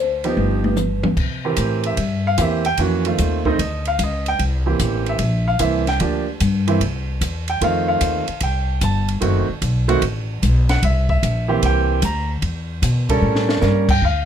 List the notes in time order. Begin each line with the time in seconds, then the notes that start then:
Already playing: D2 C5
0.24 F3 B3 D#4 G4 B4, ride
0.37 G1, high tom
0.64 high tom
0.76 hi-hat pedal, mid tom
1.03 G2, mid tom
1.17 C3, kick, crash
1.45 E3 C4 G4 A#4
1.56 A2, kick, hi-hat pedal, ride
1.84 E5, ride
1.97 G2, kick, ride
2.27 F5
2.38 E2 E3 A#3 C4 G4, kick, hi-hat pedal, ride
2.42 E5
2.65 G5, ride
2.77 F2 E3 A#3 C#4 F#4, kick, ride
3.05 D#3 A3 C4 F4, ride
3.18 D#2, kick, hi-hat pedal, ride
3.45 D#3 A3 C4 D#4 D#5, kick
3.59 D2, kick, ride
3.85 F5, ride
3.99 C#2, kick, hi-hat pedal, ride
4.04 D#5
4.26 G5, ride
4.39 C2, kick, ride
4.66 E3 A#3 C4 G4
4.79 A1, kick, hi-hat pedal, ride
5.06 E5, ride
5.19 A#1, kick, ride
5.48 F5
5.59 C2 E3 A#3 C4 E4 E5, kick, hi-hat pedal, ride
5.87 G5, snare, ride
6.00 D2 F3 A#3 D4 G4, kick, ride
6.40 G2, kick, hi-hat pedal, ride
6.68 E3 A#3 C4 E4, ride
6.81 C2, kick, ride
7.21 E2, kick, hi-hat pedal, ride
7.48 G5, ride
7.61 F2 D#3 A3 C4 F4 F5, kick, ride
7.88 F5
8.01 D#2, kick, hi-hat pedal, ride
8.28 muted upright bass stroke, ride
8.40 C2 G5, kick, ride
8.81 G1 A5, kick, hi-hat pedal, ride
9.08 ride
9.20 F#1 D#3 A3 C4 F#4, kick, ride
9.48 muted upright bass stroke
9.62 B1, kick, hi-hat pedal, ride
9.88 D#3 A3 C4 F#4, ride
10.02 A1, kick, ride
10.42 B1, kick, hi-hat pedal, ride
10.69 F#5, snare, ride
10.82 C2 E5, kick, ride
11.09 E5, kick
11.23 A#1, kick, hi-hat pedal, ride
11.48 E3 A#3 C4 G4
11.62 C2 G5, kick, ride
12.02 D2 A#5, kick, hi-hat pedal, ride
12.42 E2, kick, ride
12.82 B2, kick, hi-hat pedal, ride
13.09 G3 C#4 A4 A#4, kick, ride
13.22 A2
13.35 snare
13.49 snare
13.61 G2 G3 A#3 C#4 A#4, snare, hi-hat pedal
13.89 G5, kick, crash
14.02 D2 F5, kick